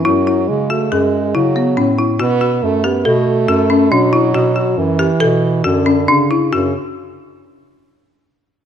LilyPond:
<<
  \new Staff \with { instrumentName = "Marimba" } { \time 5/4 \key fis \minor \tempo 4 = 140 e'8 e'4 fis'8 gis'4 e'8 b8 cis'8 e'8 | fis'8 fis'4 g'8 a'4 fis'8 cis'8 d'8 e'8 | fis'8 fis'4 g'8 a'4 fis'8 cis'8 d'8 e'8 | fis'8 r1 r8 | }
  \new Staff \with { instrumentName = "French horn" } { \clef bass \time 5/4 \key fis \minor fis4 gis8 a8 gis4 fis4. r8 | b4 a8 b8 a2 fis4~ | fis4 e2 d4. r8 | cis8 r1 r8 | }
  \new Staff \with { instrumentName = "Bass clarinet" } { \clef bass \time 5/4 \key fis \minor fis,4 cis4 fis,4 cis4 a,4 | b,4 fis,4 b,4 fis,4 b,4 | b,4 fis,4 b,4 fis,4 cis4 | fis,8 r1 r8 | }
>>